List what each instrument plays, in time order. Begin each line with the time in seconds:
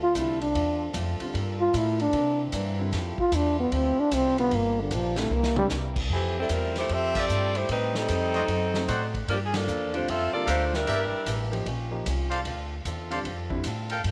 Already playing: upright bass D2, trombone section C4 D4 F4 A4
0.03 trombone F4
0.14 upright bass C2, steel-string acoustic guitar D3 A3 C4 F4, grand piano D3 G3 C4 F4, trombone E4, kick, hi-hat pedal, ride
0.41 trombone D4, ride
0.54 upright bass E2, steel-string acoustic guitar D3 A3 C4 F4, kick, ride
0.93 upright bass F2, steel-string acoustic guitar D3 A3 C4 F4, kick, hi-hat pedal, ride
1.20 grand piano D3 G3 C4 F4, muted upright bass stroke, ride
1.33 upright bass G2, steel-string acoustic guitar G3 A#3 F4 A4, trombone section G3 F4 A#4, kick, ride
1.60 trombone F4
1.73 upright bass A2, steel-string acoustic guitar G3 A#3 F4 A4, trombone E4, kick, hi-hat pedal, ride
2.00 trombone D4, ride
2.12 steel-string acoustic guitar C3 E3 A#3 D4, upright bass C3, trombone section E3 C4 D4 A#4, kick, ride
2.52 upright bass G2, steel-string acoustic guitar C3 E3 A#3 D4, kick, hi-hat pedal, ride
2.79 grand piano D3 G3 C4 E4
2.91 upright bass F2, steel-string acoustic guitar F3 A3 E4 G4, trombone section A3 E4 F4 G4, kick, snare, ride
3.18 trombone F4, muted upright bass stroke, kick
3.32 upright bass E2, steel-string acoustic guitar F3 A3 E4 G4, trombone D4, kick, hi-hat pedal, ride
3.60 trombone B3
3.72 upright bass D2, steel-string acoustic guitar F3 A3 E4 G4, trombone C4, kick, ride
3.98 trombone D4, muted upright bass stroke
4.11 upright bass C2, steel-string acoustic guitar F3 A3 E4 G4, trombone C4, kick, hi-hat pedal, ride
4.38 grand piano D3 G3 C4 F4, trombone B3, ride
4.51 upright bass G1, steel-string acoustic guitar G2 F3 A#3 D4, trombone section F3 A#3 D4 G4, kick, ride
4.55 trombone A#3
4.81 trombone D3
4.91 upright bass A#1, steel-string acoustic guitar G2 F3 A#3 D4, kick, hi-hat pedal, ride
4.95 trombone F3
5.16 grand piano D3 G3 C4 E4, trombone A3, snare, ride
5.30 upright bass C2, steel-string acoustic guitar C3 G3 A#3 E4, trombone section E3 C4
5.34 trombone A#3
5.43 snare
5.56 grand piano D3 G3 C4 D4, trombone G3, mid tom
5.70 upright bass C2, steel-string acoustic guitar C3 G3 A#3 E4, snare, hi-hat pedal
5.96 kick, crash
6.09 upright bass F2, saxophone section E3 A3 C4 G4, steel-string acoustic guitar F3 A3 E4 G4, kick
6.40 saxophone section G3 C4 E4 A4
6.49 upright bass E2, steel-string acoustic guitar F3 A3 E4 G4, saxophone section G3 C4 E4 A#4, kick, hi-hat pedal, ride
6.76 saxophone section A3 E4 G4 C5, snare, ride
6.89 upright bass F2, steel-string acoustic guitar F3 A3 E4 G4, saxophone section C4 G4 A4 E5, kick, ride
7.14 saxophone section C4 G4 A4 D5, trumpet section F4 G4 A4 E5, kick, crash
7.29 upright bass G2, steel-string acoustic guitar F3 A3 E4 G4, hi-hat pedal
7.55 saxophone section A3 E4 G4 C5, ride
7.68 steel-string acoustic guitar A2 G3 C4 D#4, upright bass A2, saxophone section G3 C4 D#4 B4, kick, ride
7.95 saxophone section G3 C4 D#4 A4, snare
8.08 upright bass F2, steel-string acoustic guitar A2 G3 C4 D#4, kick, hi-hat pedal, ride
8.34 grand piano F#3 A3 C4 D#4, trumpet section F#4 C5 D5 D#5, ride
8.48 upright bass F#2, steel-string acoustic guitar D3 F#3 C4 D#4, kick, ride
8.74 grand piano F#3 A3 C4 D#4, snare
8.88 upright bass A2, steel-string acoustic guitar D3 F#3 C4 D#4, trumpet section F#4 C5 D5 F#5, kick, hi-hat pedal, ride
9.14 kick, ride
9.28 upright bass G2, saxophone section F3 A#3 D4 G4, steel-string acoustic guitar G3 A#3 F4 A4, kick, ride
9.45 saxophone section G#4
9.54 saxophone section F3 A#3 D4 A4, snare, ride
9.68 upright bass E2, steel-string acoustic guitar G3 A#3 F4 A4, hi-hat pedal
9.93 grand piano D3 G3 C4 F4, saxophone section A3 D4 F4 C5, ride
10.07 upright bass F2, steel-string acoustic guitar G3 A#3 F4 A4, saxophone section C4 F4 A4 E5, kick, ride
10.33 grand piano D3 G3 C4 F4, saxophone section A#3 F4 A4 D5, muted upright bass stroke
10.46 upright bass D2, steel-string acoustic guitar G3 A#3 F4 A4, saxophone section A3 D4 F4 C5, trumpet section G4 A4 A#4 F5, kick, hi-hat pedal, ride
10.74 saxophone section G3 D4 E4 A#4, snare
10.87 upright bass G1, steel-string acoustic guitar E3 A#3 D4 G4, trumpet section G4 A#4 D5 E5, kick, ride
11.11 muted upright bass stroke
11.26 upright bass A1, steel-string acoustic guitar E3 A#3 D4 G4, kick, hi-hat pedal, ride
11.51 grand piano F3 A#3 D#4 G4, ride
11.65 upright bass A#1, steel-string acoustic guitar D#3 C#4 F4 G4, kick, ride
11.91 grand piano F3 A#3 D#4 G4
12.06 upright bass C2, steel-string acoustic guitar D#3 C#4 F4 G4, kick, hi-hat pedal, ride
12.30 trumpet section A4 C5 D5 F5, ride
12.45 upright bass D2, steel-string acoustic guitar D3 C4 F4 A4, kick, ride
12.85 upright bass E2, steel-string acoustic guitar D3 C4 F4 A4, kick, hi-hat pedal, ride
13.10 grand piano D3 G3 C4 F4, trumpet section A4 C5 D5 F5, ride
13.25 upright bass F2, steel-string acoustic guitar D3 C4 F4 A4, kick, ride
13.50 grand piano D3 G3 C4 E4, kick
13.64 upright bass A2, steel-string acoustic guitar D3 C4 F4 A4, kick, hi-hat pedal, ride
13.90 trumpet section A4 A#4 F5 G5, ride
14.04 upright bass G2, steel-string acoustic guitar G3 A#3 F4 A4, kick, ride